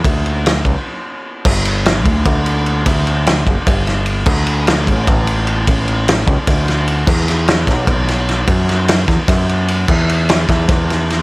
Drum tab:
CC |-------|x------|-------|x------|
RD |xxxx---|-xxxxxx|xxxxxxx|-xxxxxx|
SD |--o----|--o----|--o--o-|--o----|
BD |o--o---|o--oo--|o--oo--|o--oo--|

CC |-------|x------|-------|x------|
RD |xxxxxxx|-xxxxxx|xxxxxxx|-xxxxxx|
SD |--o-oo-|-ooo-oo|-oooo--|--ooooo|
BD |o--oo--|o--oo--|o--oo--|o--oo--|